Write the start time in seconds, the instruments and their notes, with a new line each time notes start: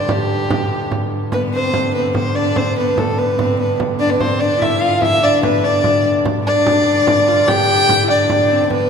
Already playing: harmonium G2 D3, fiddle D5
0.09 fiddle G4, frame drum
0.30 frame drum
0.50 frame drum
0.71 frame drum
0.92 frame drum
1.12 frame drum
1.32 harmonium G2 D3, viola da gamba B3, fiddle B4, frame drum
1.53 viola da gamba C4, fiddle C5
1.74 frame drum
1.94 viola da gamba B3, fiddle B4, frame drum
2.01 viola da gamba C4
2.08 viola da gamba B3
2.15 fiddle C5, frame drum
2.36 viola da gamba D4, fiddle D5
2.56 viola da gamba C4, fiddle C5, frame drum
2.77 viola da gamba B3, fiddle B4
2.97 viola da gamba A3, fiddle A4, frame drum
3.17 viola da gamba B3, fiddle B4, frame drum
3.38 viola da gamba C4, frame drum
3.59 viola da gamba B3, fiddle B4
3.80 frame drum
3.99 viola da gamba D4, fiddle D5
4.10 viola da gamba B3, fiddle B4
4.20 viola da gamba C4, fiddle C5, frame drum
4.40 viola da gamba D4, fiddle D5, frame drum
4.60 viola da gamba E4, fiddle E5, frame drum
4.81 viola da gamba F4, fiddle F5
5.02 viola da gamba E4, fiddle E5, frame drum
5.23 viola da gamba D4, fiddle D5, frame drum
5.43 viola da gamba B3, fiddle B4, frame drum
5.64 viola da gamba D4, fiddle D5
5.84 frame drum
6.05 frame drum
6.25 harmonium G2 D3, frame drum
6.45 viola da gamba D4, fiddle D5
6.66 frame drum
6.87 frame drum
7.07 frame drum
7.28 viola da gamba F4
7.48 viola da gamba G4, fiddle G5, frame drum
7.89 frame drum
8.03 viola da gamba E4
8.10 viola da gamba D4, fiddle D5, frame drum
8.30 frame drum
8.51 viola da gamba C4
8.70 viola da gamba B3, fiddle B4, frame drum